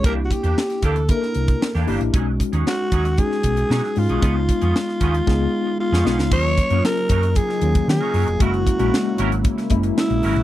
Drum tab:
CC |----------------|----------------|----------------|x---------------|
HH |x-xx-xxxx-xx-xox|x-xx--xxx-xx--ox|x-xx--xx--------|--xx-xxxx-xx--ox|
SD |----oo---o--oo--|----o----o--oo--|----oo--o----ooo|----o----o--o---|
BD |o-o---o-o--o----|o-o---o-o-o-----|o-o---o-o-------|o-o---o-o--o----|

CC |----------------|
HH |xxxx--xxxxxx-xox|
SD |----o----o--o---|
BD |o-o-----o-o-----|